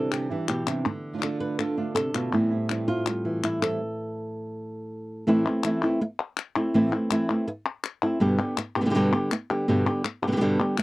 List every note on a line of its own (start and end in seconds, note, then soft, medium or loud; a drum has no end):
0.00 0.10 C3 medium
0.00 0.30 C3 medium
0.00 0.30 D3 medium
0.00 0.11 E3 medium
0.00 0.11 G3 medium
0.00 0.12 D4 medium
0.00 0.84 D4 soft
0.00 0.12 E4 medium
0.00 0.11 A4 medium
0.11 0.29 C3 medium
0.11 0.30 E3 medium
0.11 0.30 G3 medium
0.11 0.30 D4 medium
0.11 0.29 E4 medium
0.11 0.47 G4 medium
0.11 clap medium
0.30 0.84 E3 medium
0.30 0.48 G3 soft
0.30 0.48 D4 soft
0.30 0.48 E4 soft
0.48 0.67 B2 medium
0.48 0.85 G4 medium
0.48 muted nylon-string guitar stroke soft
0.48 clap medium
0.67 0.85 C3 medium
0.67 0.86 G3 soft
0.67 0.85 D4 soft
0.67 0.85 E4 soft
0.67 clap medium
0.85 2.33 D3 medium
0.85 muted nylon-string guitar stroke medium
1.13 1.17 D3 soft
1.13 1.17 A3 soft
1.13 1.17 D4 soft
1.13 1.18 F4 soft
1.18 1.21 D3 soft
1.18 1.22 A3 soft
1.18 1.22 D4 soft
1.18 1.22 F4 medium
1.18 clap medium
1.22 1.58 D3 medium
1.22 1.58 A3 medium
1.22 1.59 D4 medium
1.22 1.59 F4 medium
1.22 1.40 A4 soft
1.40 1.58 B4 medium
1.59 1.77 D3 medium
1.59 1.77 A3 medium
1.59 1.77 D4 medium
1.59 1.77 F4 medium
1.59 1.94 A4 medium
1.59 clap medium
1.78 1.95 A3 soft
1.78 2.31 D4 medium
1.78 1.96 D4 soft
1.78 1.95 F4 soft
1.95 2.14 C3 medium
1.95 2.32 A4 medium
1.95 muted nylon-string guitar stroke soft
1.95 clap medium
2.14 2.33 B2 medium
2.14 2.33 A3 soft
2.14 2.32 D4 soft
2.14 2.32 F4 soft
2.14 clap medium
2.33 2.50 A2 medium
2.33 5.26 A2 medium
2.33 2.51 E3 medium
2.33 2.51 G3 medium
2.33 2.51 C4 medium
2.33 2.50 E4 medium
2.51 2.69 G3 soft
2.51 2.69 C4 soft
2.51 2.69 E4 soft
2.70 2.87 E3 soft
2.70 2.88 G3 soft
2.70 3.78 C4 soft
2.70 2.88 C4 soft
2.70 2.87 E4 soft
2.70 clap medium
2.88 3.06 G3 soft
2.88 3.06 C4 soft
2.88 3.06 E4 soft
2.88 3.43 F4 medium
3.06 3.81 G3 soft
3.06 muted nylon-string guitar stroke medium
3.06 clap medium
3.25 3.78 E3 medium
3.44 3.62 E4 medium
3.44 clap medium
3.62 3.80 G3 soft
3.62 3.80 C4 soft
3.62 3.80 E4 soft
3.62 5.28 A4 medium
3.62 clap medium
5.27 5.45 A2 medium
5.27 5.45 E3 medium
5.27 5.45 A3 medium
5.27 5.45 C4 medium
5.27 5.44 E4 medium
5.46 5.64 A3 soft
5.46 5.64 C4 medium
5.46 5.63 E4 medium
5.64 5.82 E3 medium
5.64 5.82 A3 medium
5.64 5.82 C4 medium
5.64 5.82 E4 medium
5.64 clap medium
5.83 6.01 A3 soft
5.83 6.01 C4 medium
5.83 6.00 E4 medium
6.01 muted nylon-string guitar stroke medium
6.37 clap medium
6.56 6.74 A3 medium
6.56 6.74 C4 medium
6.56 6.74 E4 medium
6.74 6.92 A2 medium
6.74 6.92 E3 medium
6.74 6.92 A3 medium
6.74 6.92 C4 medium
6.74 6.91 E4 loud
6.92 7.10 A3 soft
6.92 7.10 C4 soft
6.92 7.10 E4 medium
7.11 7.28 E3 medium
7.11 7.29 A3 medium
7.11 7.29 C4 medium
7.11 7.28 E4 medium
7.11 clap medium
7.29 7.47 A3 soft
7.29 7.47 C4 soft
7.29 7.47 E4 medium
7.48 muted nylon-string guitar stroke medium
7.84 clap medium
8.03 8.21 A3 soft
8.03 8.21 C4 medium
8.03 8.20 E4 medium
8.20 8.38 G2 medium
8.20 8.38 B2 medium
8.20 8.39 D3 medium
8.20 8.39 G3 loud
8.20 8.38 B3 loud
8.20 8.38 G4 medium
8.39 8.57 D3 soft
8.39 8.57 G3 medium
8.39 8.57 B3 medium
8.39 8.57 G4 medium
8.57 muted nylon-string guitar stroke medium
8.57 clap medium
8.76 8.80 D3 soft
8.76 8.80 G3 soft
8.76 8.81 B3 medium
8.76 8.81 G4 medium
8.81 8.84 B2 medium
8.81 8.85 D3 medium
8.81 8.85 G3 medium
8.81 8.85 B3 medium
8.81 8.85 G4 medium
8.85 8.89 B2 medium
8.85 8.89 D3 medium
8.85 8.90 G3 medium
8.85 8.90 B3 medium
8.85 8.90 G4 medium
8.90 8.94 B2 medium
8.90 8.94 D3 medium
8.90 8.94 G3 medium
8.90 8.94 B3 medium
8.90 8.95 G4 medium
8.94 9.12 G2 medium
8.94 9.12 B2 medium
8.94 9.12 D3 loud
8.94 9.13 G3 medium
8.94 9.13 B3 loud
8.94 9.12 G4 loud
9.13 9.31 D3 soft
9.13 9.31 G3 soft
9.13 9.31 B3 medium
9.13 9.30 G4 medium
9.31 muted nylon-string guitar stroke medium
9.31 clap medium
9.50 9.67 D3 soft
9.50 9.68 G3 soft
9.50 9.68 B3 medium
9.50 9.67 G4 medium
9.68 9.86 G2 medium
9.68 9.86 B2 medium
9.68 9.86 D3 medium
9.68 9.86 G3 medium
9.68 9.86 B3 medium
9.68 9.85 G4 medium
9.87 10.04 D3 medium
9.87 10.04 G3 medium
9.87 10.04 B3 soft
9.87 10.04 G4 medium
10.04 muted nylon-string guitar stroke medium
10.04 clap medium
10.22 10.27 D3 medium
10.22 10.27 G3 soft
10.22 10.27 B3 soft
10.22 10.27 G4 medium
10.27 10.31 B2 medium
10.27 10.31 D3 medium
10.27 10.31 G3 medium
10.27 10.32 B3 medium
10.27 10.32 G4 medium
10.32 10.35 B2 medium
10.32 10.36 D3 medium
10.32 10.36 G3 medium
10.32 10.36 B3 medium
10.32 10.37 G4 medium
10.36 10.40 B2 medium
10.36 10.40 D3 medium
10.36 10.40 G3 medium
10.36 10.41 B3 medium
10.36 10.41 G4 medium
10.41 10.59 G2 medium
10.41 10.59 B2 medium
10.41 10.59 D3 medium
10.41 10.59 G3 medium
10.41 10.59 B3 medium
10.41 10.59 G4 medium
10.60 10.78 D3 soft
10.60 10.78 G3 medium
10.60 10.78 B3 soft
10.60 10.77 G4 medium
10.78 muted nylon-string guitar stroke medium
10.78 clap medium